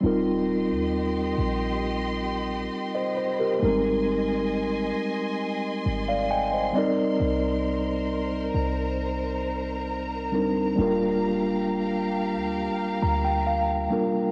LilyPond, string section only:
\new Staff \with { instrumentName = "String section" } { \time 4/4 \key ees \major \tempo 4 = 67 << { c'''1 | c'''1~ | c'''4. bes''2~ bes''8~ | bes''1 | } \\ { <g' ees''>1 | <ees'' aes''>2.~ <ees'' aes''>8 <bes' c''>8~ | <bes' c''>1 | <g' f''>1 | } >> }